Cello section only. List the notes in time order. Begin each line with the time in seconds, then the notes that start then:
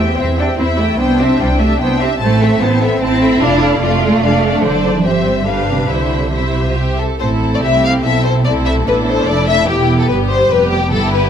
0.10 B3
0.18 C4
0.39 D4
0.59 C4
0.79 A3
0.99 B3
1.20 C4
1.41 G3
1.60 A3
1.80 B3
2.01 C4
2.22 A3
2.62 B3
3.02 C4
3.42 D4
3.82 A3
4.62 D3
4.95 E3
5.04 F3
5.25 G3
5.46 D3
5.67 C3
5.90 D3
6.34 C3
7.21 A2
7.62 C3
8.04 B2
8.45 C3
8.87 A2
9.29 F2
9.70 E2
10.11 G2
10.52 F2
10.93 G2